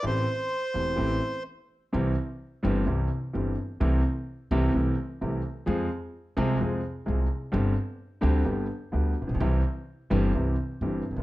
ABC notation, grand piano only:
X:1
M:4/4
L:1/16
Q:1/4=128
K:Am
V:1 name="Grand piano" clef=bass
[A,,,A,,E,A,CG]2 z4 [E,,,E,,E,A,CG]2 [A,,,A,,E,A,CG]2 z6 | [K:C] [C,,C,E,G,CG]2 z4 [G,,,G,,E,G,CG]2 [C,,C,E,G,CG]2 z2 [G,,,G,,E,G,CG]2 z2 | [C,,C,E,A,CG]2 z4 [C,,C,E,A,CG]2 [C,,C,E,A,C]2 z2 [C,,C,E,A,CG]2 z2 | [F,,F,_A,C_A]2 z4 [C,,C,F,A,CA]2 [F,,F,A,CA]2 z2 [C,,C,F,A,CA]2 z2 |
[G,,,G,,D,G,CG]2 z4 [D,,D,G,CG]2 [G,,,G,,D,G,B,G]2 z2 [D,,D,G,B,G]2 z/2 A,,,/2 _B,,,/2 =B,,,/2 | [C,,C,E,G,CG]2 z4 [G,,,G,,E,G,CG]2 [C,,C,E,G,CG]2 z2 [G,,,G,,E,G,CG]2 z/2 ^F,,,/2 G,,,/2 z/2 |]